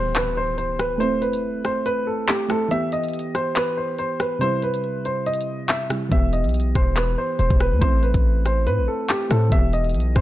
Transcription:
0.00 0.96 E3 medium
0.00 0.97 B3 medium
0.00 0.99 G4 medium
0.00 0.14 C5 medium
0.00 impact medium
0.16 0.36 B4 medium
0.16 clap loud
0.37 0.56 C5 medium
0.58 0.78 C5 medium
0.58 closed hi-hat medium
0.79 0.99 B4 medium
0.79 cross-stick loud
0.79 closed hi-hat medium
0.98 2.45 A3 medium
0.98 2.46 E4 medium
0.98 1.20 C5 loud
0.98 closed hi-hat medium
1.03 2.48 C4 medium
1.22 1.62 B4 medium
1.22 closed hi-hat medium
1.33 closed hi-hat medium
1.65 1.85 C5 medium
1.65 cross-stick medium
1.65 closed hi-hat medium
1.86 2.06 B4 medium
1.86 closed hi-hat medium
2.07 2.27 A4 medium
2.28 2.48 G4 medium
2.28 clap loud
2.28 closed hi-hat medium
2.48 2.70 A3 medium
2.48 2.71 E4 soft
2.48 2.70 A4 medium
2.48 2.72 C5 medium
2.48 cross-stick loud
2.48 closed hi-hat medium
2.68 4.36 E3 medium
2.68 4.38 B3 medium
2.68 2.91 E5 loud
2.68 closed hi-hat medium
2.73 4.39 G4 medium
2.92 3.32 D#5 medium
2.92 closed hi-hat medium
3.04 closed hi-hat soft
3.09 closed hi-hat medium
3.14 closed hi-hat medium
3.19 closed hi-hat medium
3.35 3.55 C5 medium
3.35 cross-stick medium
3.35 closed hi-hat medium
3.56 3.76 B4 medium
3.56 clap loud
3.77 3.97 C5 medium
3.99 4.19 C5 medium
3.99 closed hi-hat medium
4.20 4.40 B4 medium
4.20 cross-stick loud
4.20 closed hi-hat medium
4.39 5.86 C3 medium
4.39 5.87 G3 medium
4.39 4.61 C5 loud
4.39 closed hi-hat medium
4.44 5.88 E4 medium
4.62 5.03 B4 medium
4.62 closed hi-hat medium
4.74 closed hi-hat medium
4.84 closed hi-hat soft
5.05 5.25 C5 medium
5.05 closed hi-hat medium
5.26 5.66 D#5 medium
5.26 closed hi-hat medium
5.34 closed hi-hat medium
5.41 closed hi-hat medium
5.69 5.89 E5 medium
5.69 clap loud
5.69 closed hi-hat medium
5.90 6.11 C3 soft
5.90 6.12 G3 soft
5.90 6.12 E4 medium
5.90 cross-stick loud
5.90 closed hi-hat medium
6.09 6.46 E1 loud
6.09 7.77 E3 medium
6.09 7.78 B3 medium
6.09 6.32 E5 loud
6.09 kick loud
6.09 closed hi-hat medium
6.14 7.80 G4 medium
6.33 6.73 D#5 medium
6.33 closed hi-hat medium
6.44 6.74 B1 medium
6.44 closed hi-hat soft
6.49 closed hi-hat medium
6.54 closed hi-hat medium
6.60 closed hi-hat medium
6.75 7.16 E1 loud
6.75 6.95 C5 medium
6.75 kick loud
6.75 cross-stick medium
6.75 closed hi-hat medium
6.96 7.16 B4 medium
6.96 clap loud
7.18 7.37 C5 medium
7.39 7.50 E1 loud
7.39 7.59 C5 medium
7.39 closed hi-hat medium
7.50 7.73 E1 loud
7.50 kick medium
7.60 7.81 B4 medium
7.60 cross-stick loud
7.60 closed hi-hat medium
7.72 7.81 E2 loud
7.79 8.13 A1 loud
7.79 9.26 A3 medium
7.79 9.27 E4 medium
7.79 8.01 C5 loud
7.79 kick loud
7.79 closed hi-hat medium
7.84 9.29 C4 medium
8.03 8.43 B4 medium
8.03 closed hi-hat medium
8.14 8.68 A1 loud
8.14 kick loud
8.14 closed hi-hat medium
8.46 8.66 C5 medium
8.46 cross-stick medium
8.46 closed hi-hat medium
8.67 8.80 A2 loud
8.67 8.87 B4 medium
8.67 closed hi-hat medium
8.78 8.88 A1 medium
8.88 9.08 A4 medium
9.09 9.29 G4 medium
9.09 clap loud
9.09 closed hi-hat medium
9.29 9.51 A2 loud
9.29 9.51 A3 medium
9.29 9.52 E4 soft
9.29 9.51 A4 medium
9.29 9.53 C5 medium
9.29 cross-stick loud
9.29 closed hi-hat medium
9.49 9.96 E1 loud
9.49 10.21 E3 medium
9.49 10.21 B3 medium
9.49 9.72 E5 loud
9.49 kick loud
9.49 closed hi-hat medium
9.54 10.21 G4 medium
9.73 10.13 D#5 medium
9.73 closed hi-hat medium
9.84 closed hi-hat soft
9.89 closed hi-hat medium
9.94 10.15 B1 loud
9.94 closed hi-hat medium
10.00 closed hi-hat medium
10.16 10.21 E2 loud
10.16 10.21 C5 medium
10.16 kick medium
10.16 cross-stick medium
10.16 closed hi-hat medium

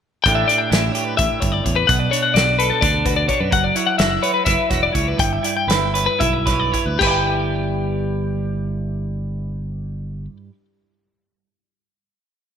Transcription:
0.24 0.43 A1 medium
0.24 1.41 A2 medium
0.24 1.91 A3 medium
0.24 0.50 D4 medium
0.24 0.70 E4 medium
0.24 0.35 G5 medium
0.24 kick loud
0.24 closed hi-hat medium
0.28 0.94 G4 medium
0.35 0.47 E5 medium
0.48 1.87 D4 medium
0.48 0.60 D5 medium
0.48 closed hi-hat medium
0.58 0.70 G5 medium
0.70 0.89 A1 loud
0.70 1.85 E4 medium
0.70 0.92 E5 medium
0.70 snare loud
0.70 closed hi-hat medium
0.92 1.88 G4 medium
0.92 1.04 C#5 medium
0.92 closed hi-hat medium
1.04 1.17 B4 medium
1.17 1.28 A1 loud
1.17 1.40 E5 medium
1.17 kick loud
1.17 closed hi-hat medium
1.40 1.60 G1 medium
1.40 1.64 G2 medium
1.40 1.52 C#5 medium
1.40 kick medium
1.40 closed hi-hat medium
1.52 1.64 D5 medium
1.64 1.83 E2 medium
1.64 1.87 A2 medium
1.64 1.76 C#5 medium
1.64 kick medium
1.64 closed hi-hat medium
1.76 1.88 B4 medium
1.87 2.06 B1 loud
1.87 3.49 B2 medium
1.87 1.99 F#5 medium
1.87 kick loud
1.87 closed hi-hat medium
1.99 2.11 D5 medium
2.11 2.82 D4 medium
2.11 2.23 C#5 medium
2.11 closed hi-hat medium
2.23 2.35 F#5 medium
2.34 2.70 B1 medium
2.34 3.05 F#4 medium
2.34 2.58 D5 medium
2.34 snare loud
2.34 closed hi-hat medium
2.59 4.22 A4 medium
2.59 2.70 B4 medium
2.59 closed hi-hat medium
2.70 2.82 A4 medium
2.81 3.26 D2 medium
2.81 3.29 D4 medium
2.81 3.06 D5 medium
2.81 kick loud
2.81 closed hi-hat medium
3.06 3.49 F#4 medium
3.06 3.16 B4 medium
3.06 kick medium
3.06 closed hi-hat medium
3.16 3.28 D5 medium
3.29 3.50 D4 medium
3.29 3.40 C#5 medium
3.29 kick medium
3.29 closed hi-hat medium
3.40 3.49 F#2 medium
3.40 3.52 B4 medium
3.51 3.70 F#1 medium
3.51 5.15 F#3 medium
3.51 3.64 F#5 medium
3.51 kick loud
3.51 closed hi-hat medium
3.64 3.76 D5 medium
3.75 4.46 E4 medium
3.75 3.88 C#5 medium
3.75 closed hi-hat medium
3.87 3.98 F#5 medium
3.98 4.17 F#1 loud
3.98 4.69 F#4 medium
3.98 4.22 E5 medium
3.98 snare loud
3.98 closed hi-hat medium
4.22 5.16 B4 medium
4.22 4.34 C#5 medium
4.22 closed hi-hat medium
4.34 4.45 B4 medium
4.45 4.55 F#1 loud
4.45 4.92 E4 medium
4.45 4.70 E5 medium
4.45 kick loud
4.45 snare soft
4.45 closed hi-hat medium
4.70 4.89 E1 medium
4.70 5.16 F#4 medium
4.70 4.82 C#5 medium
4.70 kick medium
4.70 snare soft
4.70 closed hi-hat medium
4.83 4.94 D5 medium
4.93 5.13 C#2 medium
4.93 5.43 E4 medium
4.93 5.08 C#5 medium
4.93 kick medium
4.93 closed hi-hat medium
5.08 5.19 B4 medium
5.17 5.38 G1 loud
5.17 6.97 G2 medium
5.17 5.33 G5 medium
5.17 kick loud
5.17 closed hi-hat medium
5.33 5.45 E5 medium
5.43 6.18 E4 medium
5.43 5.56 D5 medium
5.43 closed hi-hat medium
5.57 5.71 G5 medium
5.67 6.07 G1 medium
5.67 5.93 B4 medium
5.67 5.95 E5 medium
5.67 snare loud
5.67 closed hi-hat medium
5.94 6.44 B4 medium
5.94 6.07 C#5 medium
5.94 closed hi-hat medium
6.06 6.20 B4 medium
6.19 6.71 B1 medium
6.19 6.72 E4 medium
6.19 6.47 E5 medium
6.19 kick loud
6.19 closed hi-hat medium
6.46 6.97 B4 medium
6.46 6.60 C#5 medium
6.46 kick medium
6.46 snare soft
6.46 closed hi-hat medium
6.60 6.72 D5 medium
6.72 6.97 E4 medium
6.72 6.86 C#5 medium
6.72 kick medium
6.72 closed hi-hat medium
6.86 6.97 D2 medium
6.86 7.00 B4 medium
6.99 10.27 G1 medium
6.99 10.49 G2 medium
6.99 10.50 G3 medium
6.99 10.52 E4 medium
6.99 10.25 G4 medium
6.99 kick medium
6.99 splash medium
7.03 7.07 B4 medium
7.03 10.54 B4 medium
7.03 10.37 D5 medium
7.11 10.37 G5 medium

